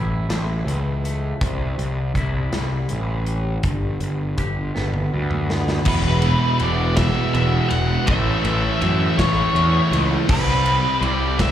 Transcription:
Already playing: A1 A2 E3 E4
0.29 A1 A3, snare, closed hi-hat
0.66 C#2 E3, closed hi-hat
1.05 A3, closed hi-hat
1.41 C2 C3, kick, closed hi-hat
1.78 C2, closed hi-hat
2.15 C2 E4, kick, closed hi-hat
2.52 C2 G3, snare, closed hi-hat
2.89 A1 E3, closed hi-hat
3.27 G3, closed hi-hat
3.63 G1 G2, kick, closed hi-hat
4.01 G1, closed hi-hat
4.38 G1 G4, kick, closed hi-hat
4.75 G1 B3, snare
4.94 high tom
5.13 D2 G3
5.31 mid tom
5.50 B3, snare
5.68 snare
5.85 E1 E2 B2 E3 G#3 E4 B4, kick, crash
6.22 E2 B2 E3, ride
6.60 E1 E2 B2 E3 D5, ride
6.97 E2 B2 E3 E5, kick, snare, ride
7.34 E1 E2 B2 E3 E5, ride
7.65 E5 F#5
7.71 E1, ride
8.06 A1 A2 E3 A3 C#4 C#5 E5, kick, ride
8.44 A1 A2 E3 A3, ride
8.81 F#2 A2 E3 A3 E5, ride
9.18 A1 A2 E3 A3 C#5, kick, snare, ride
9.54 E2 A2 E3 A3, ride
9.91 C#2, ride
10.28 C2 C3 G3 C4 B4, kick, crash
10.66 C3 G3 C4, ride
11.00 C2 C3 G3 C4 D5, ride
11.39 C3 G3 C4 E5, kick, snare, ride

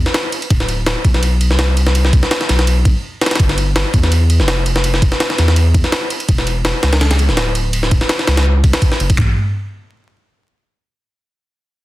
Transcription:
0.06 snare
0.14 snare, ride
0.32 ride
0.42 ride
0.50 D1, kick, ride
0.60 snare
0.69 ride
0.86 snare, ride
1.05 B1, kick, ride
1.14 snare
1.23 ride
1.41 ride
1.51 C2, snare
1.59 snare, ride
1.77 ride
1.87 snare
1.95 ride
2.05 snare
2.13 C2, kick, ride
2.23 snare
2.31 snare, ride
2.41 snare
2.49 B1, snare, ride
2.59 snare
2.67 ride
2.85 kick, ride
3.21 snare, ride
3.26 snare, ride
3.31 snare, ride
3.35 snare, ride
3.40 G1, kick, ride
3.49 snare
3.58 ride
3.76 snare, ride
3.94 E2, kick, ride
4.03 snare
4.12 ride
4.30 ride
4.40 F1, snare
4.48 snare, ride
4.66 ride
4.76 snare
4.84 ride
4.94 snare
5.02 F1, kick, ride
5.12 snare
5.20 snare, ride
5.30 snare
5.38 E2, snare, ride
5.48 snare
5.56 ride
5.74 kick, ride
5.84 snare
5.92 snare, ride
6.10 ride
6.20 ride
6.29 E1, kick, ride
6.38 snare
6.47 ride
6.65 snare, ride
6.83 C#2, snare, ride
6.93 snare, ride
7.01 snare, ride
7.11 snare, ride
7.19 ride
7.29 D1, snare
7.37 snare, ride
7.55 ride
7.73 ride
7.83 snare
7.91 D1, kick, ride
8.01 snare
8.09 snare, ride
8.19 snare
8.27 C#2, snare, ride
8.37 snare, ride
8.64 kick, ride
8.73 snare, ride
8.82 kick, ride
8.92 snare
9.00 F#1, ride
9.10 kick, ride
9.18 A1, kick, clap, floor tom

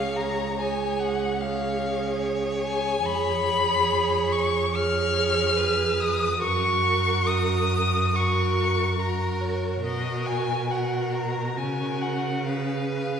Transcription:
Already playing: C#2 G#4 C#5 F5
0.16 A#5
0.57 G#4 C#5 G#5
1.00 F#5
1.40 G#4 C#5 F5
2.65 G#5
3.04 F2 G#4 C#5 B5
4.32 C#6
4.72 G#4 C#5 F6
5.57 B4
6.00 D#6
6.40 F#2 F#4 A#4 C#6
7.27 D#6
8.14 F#4 A#4 C#6
8.99 F#4 A#4 A#5
9.41 C#5
9.83 B2 F#4 A#4 D#5
10.26 G#5
10.70 F#4 A#4 F#5
11.14 A#5
11.57 C#3 F#4 A#4 G#5
12.01 F#5
12.45 G#4 B4 F5
12.95 F5

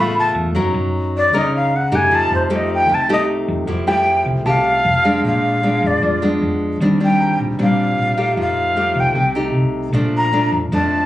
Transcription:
Already playing: A1 C#3 A3 B3 F4 E5 F5
0.00 B5
0.19 A5
0.35 E2
0.54 F#2 F#3 C#4 D#4 A#4
0.74 F#2
1.17 D5
1.33 C#2 C#3 C#4 D#4 A#4
1.38 D#5
1.56 F5
1.76 F#5
1.92 F#2 A3 D#4 G4 G#5
2.11 F2 F3 A5
2.30 F2
2.35 C5
2.50 A3 D#4 G4
2.56 D#5
2.74 G5
2.89 C2 C3
2.94 A5
3.09 A3 D#4 G4 D#5
3.48 F2
3.67 F2 F3 A3 E4 G4
3.87 A3 E4 G4 G5
4.26 C2
4.46 C2 C3 A3 G4 F5 A5
4.85 F2
5.05 G#3 D4
5.24 A#1 A#2 F5
5.63 G#3 B3 D4
5.83 F2 D5
6.02 F2 F3
6.22 G#3 B3 D4
6.42 F2
6.80 D#2 D#3 G3 C4 D4
7.00 G3 C4 D4
7.05 G5
7.20 A#5
7.40 A#1
7.59 A#1 A#2 G3 C4 D4
7.63 F5
7.98 A#1
8.17 A3 D#4 G4
8.37 F2 F3
8.42 F5
8.76 A3 D#4 G4
8.95 C2
9.00 G5
9.15 C2 C3
9.35 A3 D#4 G4
9.54 C2
9.93 A#1 A#2 F3 A3 D4
10.17 A#5
10.33 F3 A3 D4
10.52 F2
10.72 F2 F3 A3 D4 A5

